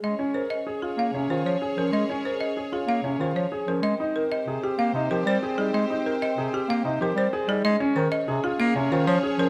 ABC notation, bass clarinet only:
X:1
M:6/4
L:1/8
Q:1/4=189
K:Bbdor
V:1 name="Bass clarinet" clef=bass
A, z4 z B, C, E, F, z F, | A, z4 z B, C, E, F, z F, | A, z3 C, z B, C, F, G, z G, | A, z3 C, z B, C, F, G, z G, |
A, z E, z C, z B, C, E, F, z F, |]